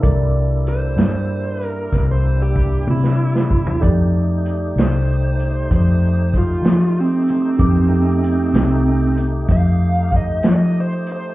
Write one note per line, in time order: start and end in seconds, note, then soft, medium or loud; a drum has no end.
0.00 0.94 C2 medium
0.00 3.78 A#3 medium
0.00 3.78 D4 medium
0.00 3.76 E4 medium
0.00 3.78 E4 medium
0.00 3.77 A4 soft
0.00 3.77 A#4 soft
0.00 3.77 D5 medium
0.00 kick loud
0.00 closed hi-hat medium
0.05 3.79 G3 medium
0.67 1.65 C5 medium
0.67 closed hi-hat medium
0.97 1.88 G2 medium
0.97 snare medium
0.97 closed hi-hat medium
1.61 2.06 A#4 medium
1.61 closed hi-hat medium
1.92 2.83 C2 medium
1.92 kick medium
1.92 snare soft
1.92 closed hi-hat medium
2.11 2.41 C5 medium
2.42 2.87 G4 medium
2.56 kick medium
2.56 closed hi-hat medium
2.87 3.78 C3 medium
2.87 3.81 E4 medium
2.87 high tom medium
3.04 snare medium
3.35 snare medium
3.51 kick medium
3.67 floor tom medium
3.80 4.73 F2 medium
3.80 7.55 A3 medium
3.80 7.55 D#4 medium
3.80 7.56 D#4 medium
3.80 7.55 G4 medium
3.80 7.56 G4 medium
3.80 7.56 A4 soft
3.80 7.56 D5 medium
3.80 kick loud
3.80 closed hi-hat medium
4.45 closed hi-hat medium
4.76 5.67 C2 medium
4.76 snare loud
4.76 closed hi-hat medium
4.80 5.70 C5 medium
5.39 closed hi-hat medium
5.71 6.62 F2 medium
5.71 kick medium
5.71 closed hi-hat medium
5.76 6.35 C5 medium
6.34 6.97 F4 medium
6.34 kick medium
6.34 closed hi-hat medium
6.63 7.55 F3 medium
6.63 snare loud
6.63 closed hi-hat medium
7.00 7.29 C4 medium
7.28 9.15 C4 loud
7.28 closed hi-hat medium
7.57 8.50 F2 medium
7.57 7.92 E3 medium
7.57 7.92 A#3 medium
7.57 11.34 D#4 medium
7.57 7.87 D#4 medium
7.57 11.34 G4 soft
7.57 7.86 G4 medium
7.57 11.34 A4 soft
7.57 11.35 D6 medium
7.57 kick loud
7.57 closed hi-hat medium
7.87 11.34 A3 medium
7.87 11.34 D#4 medium
7.87 11.33 G4 medium
8.24 closed hi-hat medium
8.54 9.45 C2 medium
8.54 snare loud
8.54 closed hi-hat medium
9.17 closed hi-hat medium
9.48 10.40 F2 medium
9.48 10.12 F5 medium
9.48 kick medium
9.48 closed hi-hat medium
10.12 kick medium
10.12 closed hi-hat medium
10.16 10.45 D#5 medium
10.43 11.35 F3 medium
10.43 snare loud
10.43 closed hi-hat medium
10.48 10.77 D#5 medium
10.81 11.09 C5 medium
11.07 closed hi-hat soft
11.12 11.35 C5 medium